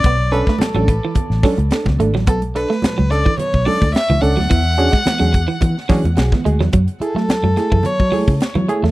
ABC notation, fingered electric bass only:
X:1
M:4/4
L:1/16
Q:1/4=108
K:F#m
V:1 name="Fingered electric bass" clef=bass
B,,,3 z2 A,,,2 z2 A,,, z C,, z C,, G,,, A,,, | B,,,3 z2 C,,2 z2 B,,, z D,, z C,, C,, D,, | E,,3 z2 E,,2 z E, z E, E,, B,,, z D,, E,, | F,, z2 F, z F,, z F,, z F, z C, z F, z E,, |]